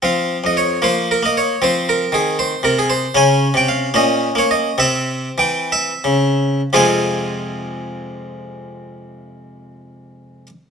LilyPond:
<<
  \new Staff \with { instrumentName = "Harpsichord" } { \time 6/8 \key f \minor \tempo 4. = 69 << { f''8. ees''16 des''8 c''8 bes'16 ees''16 des''8 | c''8 bes'8 aes'8 c''8 bes'16 aes'16 c''8 | aes''8. g''16 f''8 ees''8. des''16 ees''8 | e''4 g''8 e''4. |
<f, c aes c' f' aes' aes''>2.~ | <f, c aes c' f' aes' aes''>2. | } \\ { c'4. bes4. | c'2. | des'4. des'4. | c'2. |
r2. | r2. | } >> }
  \new Staff \with { instrumentName = "Harpsichord" } { \clef bass \time 6/8 \key f \minor f8. f,8. f8. bes8. | f4 ees4 c4 | des8. c8. bes,8. bes8. | c4 e4 des4 |
r2. | r2. | }
>>